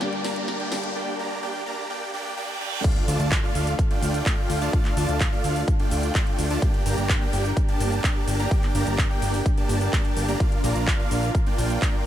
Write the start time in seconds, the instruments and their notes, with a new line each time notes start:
Already playing: grand piano D4, analog synth pad D4 G4 A#4 G5, riser
0.00 grand piano G2 D3 G3 A#3 D4, supersaw synth A#3 D4 G4 D5 G5, snare, closed hi-hat
0.13 closed hi-hat
0.24 analog synth bass G1, supersaw synth A#3 D4 G4 D5 A#5, snare, open hi-hat
0.36 closed hi-hat
0.48 snare, closed hi-hat
0.60 supersaw synth A#3 D4 G4 D5 G5, closed hi-hat
0.70 analog synth bass G1, grand piano G2 D3 G3 A#3 D4, snare, open hi-hat
0.84 closed hi-hat
0.95 supersaw synth A#3 D4 G4 D5 G5
1.19 supersaw synth A#3 D4 G4 D5 A#5
1.43 supersaw synth A#3 D4 G4 D5 G5
1.66 supersaw synth A#3 D4 G4 D5 A#5
1.90 supersaw synth A#3 D4 G4 D5 G5, reverse cymbal
2.13 supersaw synth A#3 D4 G4 D5 G5
2.37 supersaw synth A#3 D4 G4 D5 G5
2.61 supersaw synth A#3 D4 G4 D5 G5
2.84 supersaw synth A3 D4 F4 D5 F5, analog synth pad D4 F4 A4 F5, kick, closed hi-hat, crash, sub drop, shaker
2.96 closed hi-hat
3.08 analog synth bass D2, supersaw synth A3 D4 F4 D5 A5, open hi-hat, shaker
3.20 analog synth bass D2, closed hi-hat, shaker
3.32 kick, clap, closed hi-hat, shaker
3.43 supersaw synth A3 D4 F4 D5 F5
3.55 analog synth bass D2, open hi-hat, shaker
3.67 closed hi-hat, shaker
3.79 kick, closed hi-hat, shaker
3.91 supersaw synth A3 D4 F4 D5 G5, closed hi-hat
4.02 analog synth bass D2, open hi-hat, shaker
4.14 closed hi-hat, shaker
4.26 supersaw synth A3 D4 F4 D5, kick, clap, closed hi-hat, shaker
4.50 analog synth bass D2, open hi-hat, shaker
4.62 supersaw synth A3 D4 F4 D5 A5, closed hi-hat, shaker
4.73 supersaw synth A3 D4 F4 D5 F5, kick, closed hi-hat, shaker
4.85 clap, closed hi-hat
4.97 analog synth bass D2, supersaw synth A3 D4 F4 D5 A5, open hi-hat, shaker
5.09 analog synth bass D2, closed hi-hat, shaker
5.20 kick, clap, closed hi-hat, shaker
5.32 supersaw synth A3 D4 F4 D5 F5
5.44 analog synth bass D2, open hi-hat, shaker
5.56 open hi-hat, shaker
5.68 kick, closed hi-hat, shaker
5.80 supersaw synth A3 D4 F4 D5 G5, closed hi-hat
5.91 analog synth bass D2, open hi-hat, shaker
6.03 closed hi-hat, shaker
6.15 supersaw synth A3 D4 F4 D5 G5, kick, clap, closed hi-hat, shaker
6.27 closed hi-hat
6.39 analog synth bass D2, open hi-hat, shaker
6.50 supersaw synth A3 D4 F4 D5 A5, open hi-hat, shaker
6.62 supersaw synth A#3 D4 G4 D5 G5, analog synth pad G4 A#4 G5, kick, closed hi-hat, shaker
6.74 closed hi-hat
6.86 analog synth bass G1, supersaw synth A#3 D4 G4 D5 A#5, open hi-hat, shaker
6.98 analog synth bass G1, closed hi-hat, shaker
7.09 kick, clap, closed hi-hat, shaker
7.21 supersaw synth A#3 D4 G4 D5 G5
7.33 analog synth bass G1, open hi-hat, shaker
7.45 closed hi-hat, shaker
7.57 kick, closed hi-hat, shaker
7.69 supersaw synth A#3 D4 G4 D5 A5, closed hi-hat
7.80 analog synth bass G1, open hi-hat, shaker
7.92 closed hi-hat, shaker
8.04 supersaw synth A#3 D4 G4 D5, kick, clap, closed hi-hat, shaker
8.28 analog synth bass G1, open hi-hat, shaker
8.39 supersaw synth A#3 D4 G4 D5 A#5, closed hi-hat, shaker
8.51 supersaw synth A#3 D4 G4 D5 G5, kick, closed hi-hat, shaker
8.63 clap, closed hi-hat
8.75 analog synth bass G1, supersaw synth A#3 D4 G4 D5 A#5, open hi-hat, shaker
8.87 analog synth bass G1, closed hi-hat, shaker
8.98 kick, clap, closed hi-hat, shaker
9.10 supersaw synth A#3 D4 G4 D5 G5
9.22 analog synth bass G1, open hi-hat, shaker
9.34 open hi-hat, shaker
9.46 kick, closed hi-hat, shaker
9.58 supersaw synth A#3 D4 G4 D5 A5, closed hi-hat
9.69 analog synth bass G1, open hi-hat, shaker
9.81 closed hi-hat, shaker
9.93 supersaw synth A#3 D4, kick, clap, closed hi-hat, shaker
10.05 closed hi-hat
10.17 analog synth bass G1, open hi-hat, shaker
10.28 supersaw synth A#3 D4 G4 D5 A#5, open hi-hat, shaker
10.40 supersaw synth A#3 D4 F4 D5, analog synth pad F4 F5, kick, closed hi-hat, shaker
10.52 closed hi-hat
10.64 analog synth bass A#1, supersaw synth A#3 D4 F4 D5 A#5, open hi-hat, shaker
10.76 analog synth bass A#1, closed hi-hat, shaker
10.87 kick, clap, closed hi-hat, shaker
10.99 supersaw synth A#3 D4 F4 D5 F5
11.11 analog synth bass A#1, open hi-hat, shaker
11.23 closed hi-hat, shaker
11.35 kick, closed hi-hat, shaker
11.47 supersaw synth A#3 D4 F4 D5 G5, closed hi-hat
11.58 analog synth bass A#1, open hi-hat, shaker
11.70 closed hi-hat, shaker
11.82 supersaw synth A#3 D5, kick, clap, closed hi-hat, shaker